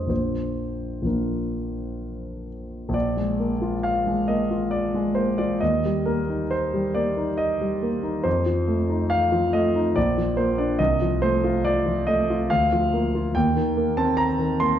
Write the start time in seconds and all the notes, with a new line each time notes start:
Already playing: F2 G3 A3 D4 C5 D#5
0.07 A#1 F3 A#3 D4 C5
1.02 A#1 F3 A#3 D4 A#4
2.89 A#1
2.94 D5
3.17 G#3
3.40 A#3
3.62 F4
3.83 F5
4.07 G#3
4.28 A#3 D#5
4.51 F4
4.71 D5
4.95 G#3
5.15 A#3 C5
5.38 F4 D5
5.61 D#2 D#5
5.85 G3
6.06 A#3 A#4
6.29 D#4
6.51 C5
6.74 G3
6.94 A#3 D5
7.17 D#4
7.37 D#5
7.61 G3
7.83 A#3
8.03 D#4
8.24 F2 C5
8.46 F3
8.68 A3
8.89 D#4
9.10 F5
9.32 F3
9.53 A3 D#5
9.75 D#4
9.96 A#1 D5
10.18 F3
10.37 A#3 C5
10.58 D4 D5
10.79 C2 D#5
11.02 F3
11.22 A3 C5
11.44 F4
11.65 D5
11.86 F3
12.07 A3 D#5
12.30 F4
12.50 D2 F5
12.72 F3
12.93 A#3
13.15 F4
13.35 D#2 G5
13.56 D#3
13.77 A#3
13.97 C4 A5
14.17 A#5
14.39 D#3
14.60 A#3 C6